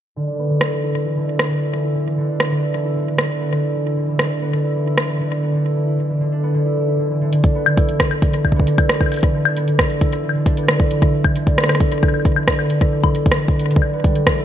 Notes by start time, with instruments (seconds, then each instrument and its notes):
0.16 harp D3
0.27 harp D4
0.39 harp B3
0.50 harp D3
0.61 harp E4, cross-stick
0.72 harp E3
0.83 harp E4
0.95 harp D3
1.06 harp E3
1.17 harp D3
1.28 harp D4
1.39 harp B3, cross-stick
1.51 harp D3
1.62 harp E4
1.73 harp E3
1.84 harp E4
1.95 harp D3
2.06 harp E3
2.18 harp D3
2.29 harp D4
2.40 harp B3, cross-stick
2.51 harp D3
2.62 harp E4
2.74 harp E3
2.85 harp E4
2.96 harp D3
3.07 harp E3
3.18 harp D3, cross-stick
3.30 harp D4
3.41 harp B3
3.52 harp D3
3.63 harp E4
3.74 harp E3
3.86 harp E4
3.97 harp D3
4.08 harp E3
4.19 harp D3, cross-stick
4.30 harp D4
4.42 harp B3
4.53 harp D3
4.64 harp E4
4.75 harp E3
4.86 harp E4
4.98 harp D3, cross-stick
5.09 harp E3
5.20 harp D3
5.31 harp D4
5.42 harp B3
5.54 harp D3
5.65 harp E4
5.76 harp E3
5.87 harp E4
5.98 harp D3
6.09 harp E3
6.21 harp D3
6.32 harp D4
6.43 harp B3
6.54 harp D3
6.65 harp E4
6.77 harp E3
6.88 harp E4
6.99 harp D3
7.10 harp E3
7.21 harp D3
7.33 harp D3, closed hi-hat
7.44 harp D4, kick, closed hi-hat
7.55 harp B3
7.66 harp D3, closed hi-hat, high woodblock
7.77 harp E4, kick, closed hi-hat
7.89 harp E3, closed hi-hat
8.00 harp E4, kick, cross-stick
8.11 harp D3, closed hi-hat, high woodblock
8.22 harp E3, kick, closed hi-hat
8.33 harp D3, closed hi-hat
8.45 harp D4, kick, high woodblock
8.52 harp B3, kick
8.60 kick
8.67 harp D3, closed hi-hat
8.78 harp E4, kick, closed hi-hat, high woodblock
8.89 harp E3, cross-stick
9.01 harp E4, kick, high woodblock
9.06 high woodblock
9.12 harp D3, closed hi-hat, high woodblock
9.14 closed hi-hat
9.16 closed hi-hat, high woodblock
9.19 closed hi-hat
9.21 harp E3, kick, closed hi-hat
9.23 closed hi-hat
9.34 harp D3
9.45 harp D4, closed hi-hat, high woodblock
9.56 harp B3, closed hi-hat
9.68 harp D3, closed hi-hat
9.79 harp E4, kick, cross-stick
9.90 harp E3, closed hi-hat
10.01 harp E4, kick, closed hi-hat
10.12 harp D3, closed hi-hat
10.24 harp E3
10.29 high woodblock
10.35 harp D3
10.46 harp D4, kick, closed hi-hat
10.57 harp B3, closed hi-hat
10.68 harp D3, cross-stick
10.80 harp E4, kick
10.91 harp E3, closed hi-hat
11.02 harp E4, kick, closed hi-hat
11.13 harp D3
11.24 harp E3, kick, closed hi-hat, high woodblock
11.36 harp D3, closed hi-hat
11.47 harp D4, kick, closed hi-hat
11.58 harp B3, cross-stick
11.64 cross-stick
11.69 harp D3, cross-stick, closed hi-hat, high woodblock
11.75 cross-stick, closed hi-hat
11.80 harp E4, kick, closed hi-hat
11.86 closed hi-hat
11.92 harp E3, closed hi-hat
12.03 harp E4, kick, high woodblock
12.08 high woodblock
12.14 harp D3, high woodblock
12.20 high woodblock
12.25 harp E3, kick, closed hi-hat
12.36 harp D3, high woodblock
12.48 harp D4, kick, cross-stick
12.59 harp B3, high woodblock
12.70 harp D3, closed hi-hat
12.81 harp E4, kick
12.92 harp E3
13.04 harp E4, kick, closed hi-hat, high woodblock
13.15 harp D3, closed hi-hat
13.26 harp E3, kick, closed hi-hat
13.32 cross-stick
13.37 harp D3
13.48 harp D4, kick, closed hi-hat
13.59 harp B3, closed hi-hat
13.71 harp D3, closed hi-hat
13.76 kick
13.82 harp D3, high woodblock
13.93 harp B3
14.04 harp G3, kick, closed hi-hat
14.15 harp D3, closed hi-hat
14.27 harp E3, kick, cross-stick
14.38 harp E4